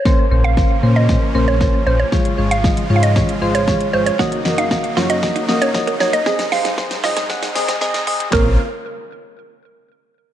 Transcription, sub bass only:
\new Staff \with { instrumentName = "Sub bass" } { \clef bass \time 4/4 \key bes \minor \tempo 4 = 116 r8 bes,,4 bes,4 bes,,4 bes,,8 | r8 aes,,4 aes,4 aes,,4 aes,,8 | r8 ges,,4 ges,4 ges,,4 ges,,8 | r8 aes,,4 aes,4 aes,,4 aes,,16 r16 |
bes,,8 r2. r8 | }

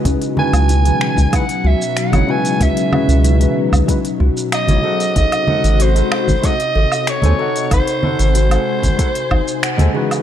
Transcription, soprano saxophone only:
\new Staff \with { instrumentName = "Soprano saxophone" } { \time 4/4 \key gis \phrygian \tempo 4 = 94 r8 gis''4. fis''8 e''8 fis''8 gis''8 | e''4. r4. dis''4 | dis''4 bis'4 dis''4 cis''4 | bis'4 bis'2~ bis'8 r8 | }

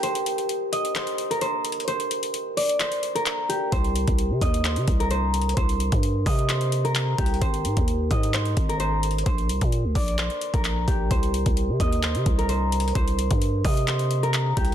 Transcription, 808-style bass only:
\new Staff \with { instrumentName = "808-style bass" } { \clef bass \time 4/4 \key c \minor \tempo 4 = 130 r1 | r1 | c,8. c,8 c16 ees,8. c16 c,4. | c,8. g,8. c2 c,8 |
aes,,8 aes,16 ees,8. aes,4 aes,,4. | bes,,8 c,16 bes,8 d,16 bes,,8. r8 bes,,8. bes,,8 | c,8. c,8 c16 ees,8. c16 c,4. | c,8. g,8. c2 c,8 | }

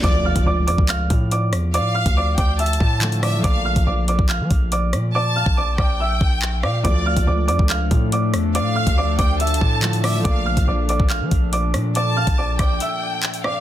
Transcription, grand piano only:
\new Staff \with { instrumentName = "Grand piano" } { \time 4/4 \key d \minor \tempo 4 = 141 <d'' d'''>8 <f'' f'''>8 <d'' d'''>8 <d'' d'''>8 <f'' f'''>4 <d'' d'''>4 | <d'' d'''>8 <f'' f'''>8 <d'' d'''>8 <d'' d'''>8 <e'' e'''>4. <d'' d'''>8 | <d'' d'''>8 <f'' f'''>8 <d'' d'''>8 <d'' d'''>8 <f'' f'''>4 <d'' d'''>4 | <d'' d'''>8 <f'' f'''>8 <d'' d'''>8 <d'' d'''>8 <e'' e'''>4. <d'' d'''>8 |
<d'' d'''>8 <f'' f'''>8 <d'' d'''>8 <d'' d'''>8 <f'' f'''>4 <d'' d'''>4 | <d'' d'''>8 <f'' f'''>8 <d'' d'''>8 <d'' d'''>8 <e'' e'''>4. <d'' d'''>8 | <d'' d'''>8 <f'' f'''>8 <d'' d'''>8 <d'' d'''>8 <f'' f'''>4 <d'' d'''>4 | <d'' d'''>8 <f'' f'''>8 <d'' d'''>8 <d'' d'''>8 <e'' e'''>4. <d'' d'''>8 | }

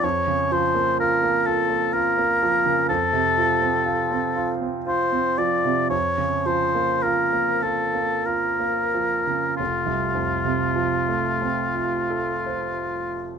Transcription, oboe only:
\new Staff \with { instrumentName = "Oboe" } { \time 3/4 \key f \major \tempo 4 = 55 des''8 c''8 bes'8 a'8 bes'4 | a'4. r8 c''8 d''8 | des''8 c''8 bes'8 a'8 bes'4 | f'2. | }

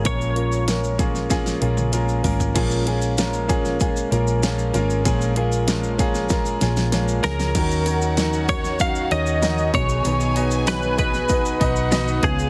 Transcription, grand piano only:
<<
  \new Staff \with { instrumentName = "Grand piano" } { \time 4/4 \key bes \phrygian \tempo 4 = 96 <bes des' f' bes'>8 <bes des' f' bes'>8 <bes des' f' bes'>8 <bes des' f' aes'>8 <bes des' f' aes'>8 <bes des' f' aes'>8 <bes des' f' bes'>8 <bes des' f' bes'>8 | <bes des' f' aes'>8 <bes des' f' aes'>8 <bes des' f' bes'>8 <bes des' f' aes'>8 <bes des' f' aes'>8 <bes des' f' bes'>8 <bes des' f' aes'>8 <bes des' f' bes'>8 | <bes des' f' aes'>8 <bes des' f' aes'>8 <bes des' f' bes'>8 <bes des' f' aes'>8 <bes des' f' bes'>8 <bes des' f' aes'>8 <bes des' f' aes'>8 <bes des' f' aes'>8 | <des' ees' ges' bes' des''>8 <des' ees' ges' bes' des''>8 <des' ees' ges' bes' des''>8 <des' ees' ges'>8 <des' ees' ges' bes'>8 <des' ees' ges' bes' des''>8 <des' ees' ges' bes' ees''>8 <b dis' fis' b' dis''>8~ |
<b dis' fis' b' dis''>8 <b dis' fis' b' dis''>8 <b dis' fis' b' des''>8 <b dis' fis' b' dis''>8 <b dis' fis' b' dis''>8 <b dis' fis' b' dis''>8 <b dis' fis' b' dis''>8 <des' f' aes' ces'' des''>8 | }
  \new Staff \with { instrumentName = "Grand piano" } { \clef bass \time 4/4 \key bes \phrygian bes,4. r2 r8 | bes,4. r2 r8 | bes,4. r2 r8 | ees4. r2 b,8~ |
b,4 r2 r8 des8 | }
>>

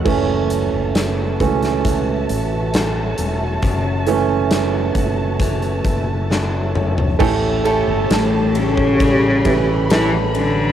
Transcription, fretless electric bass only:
\new Staff \with { instrumentName = "Fretless electric bass" } { \clef bass \time 4/4 \key fis \phrygian \tempo 4 = 67 fis,,8. fis,,8. cis,4 a,,4 e,,8 | fis,,4. fis,,4 fis,,4. | a,,8. g,,16 a,,4. a,,4. | }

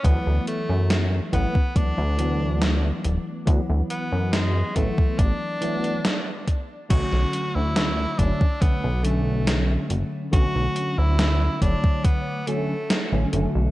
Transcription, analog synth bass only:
\new Staff \with { instrumentName = "Analog synth bass" } { \clef bass \time 4/4 \key b \minor \tempo 4 = 70 d,16 d,16 r16 fis,8 r16 a,,16 r16 d,16 d,4 r16 d,,16 r16 | d,16 d,16 r16 fis,8 r16 a,,16 r16 a,,16 r4. r16 | b,,16 b,,16 r16 d,8 r16 fis,,16 r16 b,,16 b,,4 r16 fis,,16 r16 | b,,16 b,,16 r16 d,8 r16 fis,,16 r4. a,,16 fis,,16 b,,16 | }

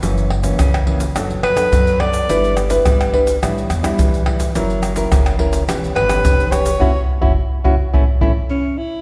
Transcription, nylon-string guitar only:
\new Staff \with { instrumentName = "Nylon-string guitar" } { \time 4/4 \key fis \phrygian \tempo 4 = 106 << { <e ais cis'>8 r16 <e ais cis'>8. <e ais cis'>16 r16 <b d' a'>8 r16 <b d' a'>8. <b d' a'>8 | <d' e' b'>8 r16 <d' e' b'>8. <d' e' b'>16 r16 <g d' e'>8 r16 <g d' e'>8. <g d' e'>8 | <cis' e' ais'>8. <cis' e' ais'>8. <cis' e' ais'>8 <cis' g' b'>8. <cis' g' b'>8. <cis' g' b'>16 r16 | <cis' e' fis'>16 r8 <cis' e' fis'>16 r8 <cis' e' fis'>16 r16 <a cis' e'>16 r16 <a cis' e'>16 r4 r16 | } \\ { fis,4 cis4 fis4 fis4 | g4 g4 a,4 e4 | fis4 cis4 e4 e4 | r1 | } >> }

